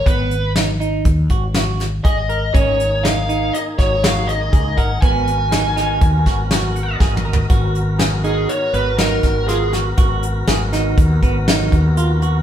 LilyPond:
<<
  \new Staff \with { instrumentName = "Lead electric guitar" } { \time 5/4 \key gis \dorian \tempo 4 = 121 b'4 r2. dis''4 | cis''4 eis''4 dis''8 cis''8 eis''8 dis''4 fis''8 | gis''1 r4 | r4. gis'8 cis''8 b'8 ais'4 gis'8 r8 |
r1 r4 | }
  \new Staff \with { instrumentName = "Clean electric guitar" } { \time 5/4 \key gis \dorian b4 dis'8 dis'4 fis'8 fis'4 gis'8 ais'8 | cis'4 dis'8 dis'4 fis'8 fis'4 gis'8 ais'8 | b4 dis'8 dis'4 fis'8 fis'4 gis'8 ais'8 | fis'4 gis'8 dis'4 b8 dis'4 eis'8 fis'8 |
fis'4 gis'8 dis'4 b8 dis'4 eis'8 fis'8 | }
  \new Staff \with { instrumentName = "Tonewheel organ" } { \time 5/4 \key gis \dorian << { r1 r4 | r1 r4 | r2. r8 fis''8 dis''4 | r1 r4 |
r1 r4 | } \\ { r1 r4 | <ais dis' gis'>1~ <ais dis' gis'>4 | <b fis' ais'>1~ <b fis' ais'>4 | <b fis' ais'>1~ <b fis' ais'>4~ |
<b fis' ais'>1~ <b fis' ais'>4 | } >> }
  \new Staff \with { instrumentName = "Fretless electric bass" } { \clef bass \time 5/4 \key gis \dorian gis,,2 dis,8 gis,,4. gis,,4 | gis,,2 r8 gis,,4. cis,8 gis,,8 | gis,,2 dis,8 gis,,4. gis,,4 | gis,,2 r8 gis,,4 gis,,4. |
gis,,4 gis,,4 dis,8 gis,,4 dis,4. | }
  \new DrumStaff \with { instrumentName = "Drums" } \drummode { \time 5/4 <hh bd>8 hh8 <hh sn>8 hh8 <hh bd>8 <hh bd>8 <hh sn>8 <hh sn>8 <hh bd>8 hh8 | <hh bd>8 hh8 <hh sn>8 hh8 hh8 <hh bd sn>8 <hh sn>8 hh8 <hh bd>8 <hh bd>8 | <hh bd>8 hh8 <hh sn>8 <hh sn>8 <hh bd>8 <hh bd sn>8 <hh sn>8 hh8 \tuplet 3/2 { <bd sn>8 toml8 tomfh8 } | <hh bd>8 hh8 <hh sn>8 hh8 hh8 hh8 <hh sn>8 <hh bd sn>8 <hh sn>8 <hh sn>8 |
<hh bd>8 hh8 <hh sn>8 <hh sn>8 <hh bd>8 <hh bd>8 <hh sn>8 <hh bd>8 hh8 hh8 | }
>>